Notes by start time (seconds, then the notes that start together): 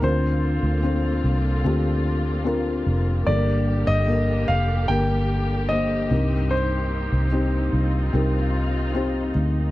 Already playing: A#3
0.01 D2 D3 C4 D4 F4 A#4 C5
0.63 D2
0.83 C4 D4 F4 C5
1.24 C2
1.64 D2 C4 D4 F4 G4
2.44 C4 D4 F4 A#4
2.86 F1
3.26 G1 G2 D3 G3 A#3 D4 G4 A4 D5
3.34 A#4
3.87 G1 D#5
4.07 A#3 G4 A#4
4.48 F1 F5
4.88 G1 A#3 D4 G4 A#4 G5
5.69 D3 A#3 G4 C5 D#5
6.10 C2 G2 C4 D#4 G4 A#4
6.51 C5
7.12 C2
7.32 C4 D#4 G4 C5
7.73 C2 F4
8.13 C2 C4 D#4 G4 A#4
8.94 C4 D#4 G4 C5
9.35 D2